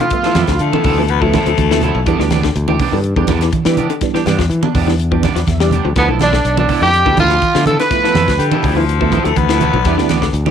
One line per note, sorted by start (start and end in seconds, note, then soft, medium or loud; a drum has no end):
0.00 0.22 D3 medium
0.00 0.70 F4 medium
0.00 low conga medium
0.10 0.44 F3 medium
0.10 0.44 A3 medium
0.10 0.45 B3 medium
0.10 0.44 E5 medium
0.10 kick medium
0.10 closed hi-hat medium
0.10 high conga soft
0.23 0.47 E3 medium
0.23 0.34 B3 soft
0.23 0.35 E4 medium
0.23 0.35 A4 medium
0.23 snare soft
0.35 0.46 F2 medium
0.35 0.51 F3 medium
0.35 0.51 B3 medium
0.35 0.51 E4 medium
0.35 0.51 A4 medium
0.35 snare medium
0.35 closed hi-hat medium
0.35 high conga medium
0.47 0.58 D2 medium
0.47 0.71 F3 medium
0.47 kick medium
0.47 snare medium
0.47 closed hi-hat soft
0.59 0.71 D3 medium
0.59 1.11 A3 medium
0.59 closed hi-hat medium
0.59 high conga soft
0.72 0.95 D3 medium
0.72 0.84 B3 medium
0.72 0.84 E4 medium
0.72 0.84 A4 medium
0.72 high conga loud
0.84 1.37 D2 medium
0.84 0.99 F3 medium
0.84 1.00 B3 medium
0.84 1.00 E4 medium
0.84 1.00 A4 medium
0.84 kick medium
0.84 open hi-hat medium
0.84 low conga medium
0.98 1.20 E3 medium
0.98 1.06 F3 medium
0.98 1.06 A3 medium
0.98 1.07 B3 medium
0.98 1.07 E4 loud
1.08 1.22 B3 loud
1.08 closed hi-hat medium
1.08 high conga soft
1.21 1.40 F3 medium
1.21 1.44 F3 medium
1.21 2.19 A3 loud
1.21 1.40 A3 medium
1.21 1.33 B3 medium
1.21 1.40 B3 medium
1.21 1.33 E4 medium
1.21 1.40 E4 loud
1.21 1.33 A4 soft
1.21 kick medium
1.33 1.49 F3 medium
1.33 1.49 B3 medium
1.33 1.49 E4 medium
1.33 1.49 A4 medium
1.33 kick medium
1.33 snare soft
1.33 closed hi-hat medium
1.33 high conga loud
1.46 1.56 D2 medium
1.46 1.68 F3 medium
1.46 closed hi-hat medium
1.58 1.89 D2 medium
1.58 kick medium
1.58 closed hi-hat medium
1.58 high conga medium
1.70 1.93 E3 medium
1.70 1.84 F3 medium
1.70 1.84 A3 medium
1.70 1.84 B3 medium
1.70 1.82 B3 soft
1.70 1.84 E4 loud
1.70 1.82 A4 medium
1.70 muted clean electric guitar stroke medium
1.70 snare medium
1.81 1.98 F3 medium
1.81 1.98 B3 medium
1.81 1.98 E4 medium
1.81 1.98 A4 medium
1.81 closed hi-hat medium
1.81 low conga medium
1.95 2.05 B1 loud
1.95 muted clean electric guitar stroke medium
2.06 2.17 E2 loud
2.06 2.39 E3 medium
2.06 2.39 G3 medium
2.06 2.19 B3 medium
2.06 2.39 B3 medium
2.06 2.19 D4 medium
2.06 2.39 D4 loud
2.06 2.19 G4 medium
2.06 kick medium
2.06 closed hi-hat medium
2.06 high conga soft
2.19 2.50 D2 medium
2.19 2.41 D3 medium
2.19 2.31 D4 soft
2.19 2.31 G4 medium
2.19 snare soft
2.30 2.46 B3 medium
2.30 2.47 D4 medium
2.30 2.47 G4 medium
2.30 snare medium
2.30 closed hi-hat soft
2.30 high conga medium
2.43 2.66 D3 medium
2.43 kick medium
2.43 snare medium
2.55 2.76 D2 loud
2.55 closed hi-hat medium
2.55 high conga soft
2.68 2.90 E3 medium
2.68 2.80 D4 medium
2.68 2.80 G4 medium
2.68 high conga medium
2.79 2.95 B3 medium
2.79 2.95 D4 medium
2.79 2.96 G4 medium
2.79 kick medium
2.79 open hi-hat medium
2.79 low conga medium
2.92 3.13 G2 medium
2.92 3.15 D3 medium
2.92 3.01 E3 medium
2.92 3.01 G3 medium
2.92 3.01 B3 medium
2.92 3.01 D4 medium
3.04 closed hi-hat medium
3.04 high conga soft
3.16 3.26 E2 loud
3.16 3.39 D3 medium
3.16 3.35 E3 medium
3.16 3.35 G3 medium
3.16 3.35 B3 medium
3.16 3.35 D4 loud
3.16 3.28 D4 soft
3.16 3.29 G4 medium
3.16 kick medium
3.27 3.49 E2 medium
3.27 3.44 B3 medium
3.27 3.44 D4 medium
3.27 3.44 G4 medium
3.27 kick medium
3.27 snare soft
3.27 closed hi-hat medium
3.27 high conga loud
3.41 3.64 E3 medium
3.41 snare soft
3.41 closed hi-hat medium
3.53 kick medium
3.53 closed hi-hat medium
3.53 high conga medium
3.65 3.78 E3 medium
3.65 3.86 E3 loud
3.65 3.88 E3 medium
3.65 3.79 G3 medium
3.65 3.79 B3 medium
3.65 3.79 D4 medium
3.65 3.77 G4 medium
3.65 snare medium
3.77 3.92 B3 medium
3.77 3.92 D4 medium
3.77 3.93 G4 medium
3.77 closed hi-hat medium
3.77 high conga medium
3.77 low conga medium
3.90 4.12 D3 medium
3.90 closed hi-hat medium
4.01 4.34 E3 loud
4.01 4.34 G3 medium
4.01 4.34 B3 medium
4.01 4.34 D4 loud
4.01 kick medium
4.01 snare soft
4.01 closed hi-hat medium
4.01 high conga soft
4.14 4.36 E3 medium
4.14 4.26 D4 medium
4.14 4.26 G4 medium
4.14 snare soft
4.26 4.37 G2 medium
4.26 4.41 B3 medium
4.26 4.41 D4 medium
4.26 4.41 G4 medium
4.26 snare medium
4.26 closed hi-hat medium
4.26 high conga medium
4.39 4.49 E2 medium
4.39 4.61 F3 medium
4.39 kick medium
4.39 snare medium
4.39 closed hi-hat soft
4.50 4.61 E3 medium
4.50 closed hi-hat medium
4.50 high conga soft
4.63 4.85 B2 medium
4.63 4.74 D4 medium
4.63 high conga medium
4.75 5.27 E2 medium
4.75 4.89 B3 medium
4.75 4.90 D4 medium
4.75 4.90 G4 medium
4.75 kick medium
4.75 open hi-hat medium
4.75 low conga medium
4.87 4.96 E3 medium
4.87 5.09 E3 medium
4.87 4.96 G3 medium
4.87 4.96 B3 medium
4.87 4.96 D4 loud
4.87 snare soft
4.99 closed hi-hat medium
4.99 high conga soft
5.11 5.29 E3 medium
5.11 5.33 F3 medium
5.11 5.30 G3 medium
5.11 5.30 B3 medium
5.11 5.30 D4 loud
5.11 5.23 D4 soft
5.11 5.23 G4 medium
5.11 kick medium
5.23 5.38 B3 medium
5.23 5.39 D4 medium
5.23 5.39 G4 medium
5.23 5.46 D5 medium
5.23 kick medium
5.23 snare soft
5.23 closed hi-hat medium
5.23 high conga loud
5.35 5.45 E2 medium
5.35 5.58 F3 medium
5.35 snare soft
5.35 closed hi-hat medium
5.47 5.79 E2 loud
5.47 5.71 E5 medium
5.47 kick medium
5.47 snare soft
5.47 closed hi-hat medium
5.47 high conga medium
5.60 5.73 E3 medium
5.60 5.73 G3 medium
5.60 5.82 G3 medium
5.60 5.73 B3 medium
5.60 5.73 D4 medium
5.60 5.71 D4 soft
5.60 5.72 G4 medium
5.60 snare medium
5.71 5.87 B3 medium
5.71 5.87 D4 medium
5.71 5.87 G4 medium
5.71 5.94 G5 medium
5.71 closed hi-hat medium
5.71 high conga medium
5.71 low conga medium
5.85 5.95 D2 medium
5.85 5.95 F3 medium
5.95 6.07 D2 loud
5.95 6.28 F3 medium
5.95 6.09 F3 medium
5.95 6.28 A3 medium
5.95 6.28 B3 medium
5.95 6.09 B3 medium
5.95 6.08 B3 medium
5.95 6.09 B3 medium
5.95 6.28 E4 medium
5.95 6.08 E4 medium
5.95 6.07 A4 medium
5.95 kick medium
5.95 snare soft
5.95 closed hi-hat medium
5.95 high conga soft
6.08 6.39 B1 medium
6.08 6.31 D3 medium
6.08 6.20 B3 soft
6.08 6.20 E4 medium
6.08 6.20 A4 medium
6.19 6.35 F3 medium
6.19 6.36 B3 medium
6.19 6.55 D4 medium
6.19 6.56 D4 medium
6.19 6.36 E4 medium
6.19 6.36 A4 medium
6.19 snare medium
6.19 closed hi-hat medium
6.19 high conga medium
6.33 6.55 D3 medium
6.33 kick medium
6.33 snare medium
6.44 6.66 B1 loud
6.44 closed hi-hat medium
6.44 high conga soft
6.57 6.79 F3 medium
6.57 6.68 B3 medium
6.57 6.81 D4 medium
6.57 6.69 A4 medium
6.57 high conga medium
6.69 6.84 B3 medium
6.69 6.85 E4 medium
6.69 6.85 A4 medium
6.69 muted clean electric guitar stroke medium
6.69 kick medium
6.69 open hi-hat medium
6.69 low conga medium
6.82 7.02 F2 medium
6.82 7.04 D3 medium
6.82 6.90 F3 medium
6.82 6.91 A3 medium
6.82 6.91 B3 medium
6.82 6.91 E4 medium
6.82 7.16 G4 loud
6.82 7.16 G4 medium
6.93 closed hi-hat medium
6.93 high conga soft
7.05 7.16 D2 loud
7.05 7.28 D3 medium
7.05 7.24 F3 medium
7.05 7.24 A3 medium
7.05 7.24 B3 medium
7.05 7.17 B3 soft
7.05 7.24 E4 medium
7.05 7.17 E4 soft
7.05 7.18 A4 soft
7.05 kick medium
7.17 7.38 D2 medium
7.17 7.33 F3 medium
7.17 7.33 B3 medium
7.17 7.33 E4 medium
7.17 7.64 F4 loud
7.17 7.33 A4 medium
7.17 kick medium
7.17 closed hi-hat medium
7.17 high conga loud
7.30 7.52 F3 medium
7.30 closed hi-hat medium
7.42 kick medium
7.42 closed hi-hat medium
7.42 high conga medium
7.54 7.76 D3 medium
7.54 7.68 F3 medium
7.54 7.77 F3 medium
7.54 7.68 A3 medium
7.54 7.68 B3 medium
7.54 7.66 B3 soft
7.54 7.68 E4 medium
7.54 7.66 E4 soft
7.54 7.66 A4 soft
7.54 snare medium
7.66 7.82 F3 medium
7.66 7.82 B3 medium
7.66 7.82 E4 medium
7.66 7.78 A4 medium
7.66 7.79 A4 medium
7.66 7.82 A4 medium
7.66 closed hi-hat medium
7.66 high conga medium
7.66 low conga medium
7.80 8.01 D3 medium
7.80 8.48 B4 loud
7.80 8.49 B4 medium
7.80 snare soft
7.80 closed hi-hat medium
7.90 8.23 F3 medium
7.90 8.23 A3 medium
7.90 8.23 B3 medium
7.90 8.23 E4 medium
7.90 kick medium
7.90 snare soft
7.90 closed hi-hat medium
7.90 high conga soft
8.03 8.26 E3 medium
8.03 8.15 B3 soft
8.03 8.15 E4 soft
8.03 8.15 A4 medium
8.03 snare soft
8.15 8.26 F2 medium
8.15 8.30 F3 medium
8.15 8.30 B3 medium
8.15 8.31 E4 medium
8.15 8.31 A4 medium
8.15 snare medium
8.15 closed hi-hat soft
8.15 high conga medium
8.28 8.38 D2 medium
8.28 8.50 F3 medium
8.28 kick medium
8.28 snare medium
8.28 closed hi-hat soft
8.38 8.50 D3 medium
8.38 8.78 G3 medium
8.38 closed hi-hat medium
8.38 high conga soft
8.52 8.74 D3 medium
8.52 8.65 B3 soft
8.52 8.64 E4 medium
8.52 8.64 A4 medium
8.52 high conga loud
8.63 9.16 D2 medium
8.63 8.79 F3 medium
8.63 8.79 E4 medium
8.63 kick medium
8.63 open hi-hat medium
8.63 low conga medium
8.76 8.98 E3 medium
8.76 8.85 F3 medium
8.76 9.26 F3 medium
8.76 8.85 A3 medium
8.76 8.85 B3 medium
8.76 8.85 E4 loud
8.87 closed hi-hat medium
8.87 high conga soft
9.01 9.23 F3 medium
9.01 9.19 F3 loud
9.01 9.19 A3 medium
9.01 9.19 B3 medium
9.01 9.12 B3 soft
9.01 9.12 E4 medium
9.01 9.19 E4 loud
9.01 9.12 A4 medium
9.01 kick medium
9.12 9.27 F3 medium
9.12 9.28 B3 medium
9.12 9.28 E4 medium
9.12 9.28 A4 medium
9.12 kick medium
9.12 closed hi-hat medium
9.12 high conga medium
9.24 9.35 D2 medium
9.24 9.47 F3 medium
9.24 9.38 A3 medium
9.24 closed hi-hat medium
9.36 9.68 D2 medium
9.36 10.34 B3 loud
9.36 kick medium
9.36 closed hi-hat medium
9.36 high conga medium
9.49 9.71 E3 medium
9.49 9.62 F3 medium
9.49 9.62 A3 medium
9.49 9.62 B3 medium
9.49 9.60 B3 soft
9.49 9.63 E4 loud
9.49 9.61 E4 medium
9.49 9.61 A4 medium
9.49 snare medium
9.61 9.76 F3 medium
9.61 9.76 B3 medium
9.61 9.76 E4 medium
9.61 9.77 A4 medium
9.61 closed hi-hat medium
9.61 high conga medium
9.61 low conga medium
9.73 9.84 B1 medium
9.73 9.84 F3 medium
9.73 low conga medium
9.85 9.96 E2 loud
9.85 10.18 G3 loud
9.85 9.98 B3 medium
9.85 10.18 B3 medium
9.85 9.97 D4 medium
9.85 10.18 D4 medium
9.85 10.18 E4 loud
9.85 9.96 G4 medium
9.85 kick medium
9.85 snare soft
9.85 closed hi-hat medium
9.85 high conga soft
9.97 10.28 D2 medium
9.97 10.20 D3 medium
9.97 10.08 D4 medium
9.97 10.09 G4 medium
9.97 snare soft
10.09 10.24 B3 medium
10.09 10.25 D4 medium
10.09 10.25 G4 medium
10.09 snare medium
10.09 closed hi-hat medium
10.09 high conga medium
10.22 10.44 D3 medium
10.22 kick medium
10.22 snare medium
10.33 10.51 D2 loud
10.33 closed hi-hat medium
10.33 high conga soft
10.46 10.51 E3 medium
10.46 10.51 D4 soft
10.46 10.51 G4 medium
10.46 high conga loud